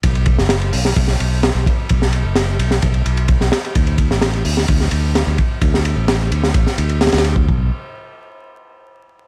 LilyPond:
<<
  \new Staff \with { instrumentName = "Fingered electric bass" } { \clef bass \time 4/4 \key b \minor \tempo 4 = 129 b,,8. fis,,8. b,,8 b,,8 b,,8. b,,16 r8 | b,,8. fis,,8. b,,8 b,,8 b,,8. b,,16 r8 | d,8. a,,8. d,8 d,8 d,8. d,16 r8 | d,8. a,,8. d,8 a,,16 r16 d,8. d,8. |
b,,8 r2. r8 | }
  \new DrumStaff \with { instrumentName = "Drums" } \drummode { \time 4/4 <bd cymr>16 cymr16 <bd cymr>16 sn16 <cymr sn>16 cymr16 hho16 sn16 <bd cymr>16 sn16 cymr8 <cymr sn>8 <bd cymr>8 | <bd cymr>16 sn16 cymr8 <cymr sn>8 cymr16 sn16 <bd cymr>16 cymr16 cymr16 cymr16 <bd cymr>16 sn16 <cymr sn>16 cymr16 | <bd cymr>16 cymr16 <bd cymr>16 sn16 <cymr sn>16 cymr16 hho16 sn16 <bd cymr>16 sn16 cymr8 <cymr sn>8 <bd cymr>8 | <bd cymr>16 sn16 cymr8 <cymr sn>8 cymr16 sn16 <bd cymr>16 sn16 cymr16 cymr16 <cymr sn>32 <cymr sn>32 <cymr sn>32 <cymr sn>32 cymr16 bd16 |
bd4 r4 r4 r4 | }
>>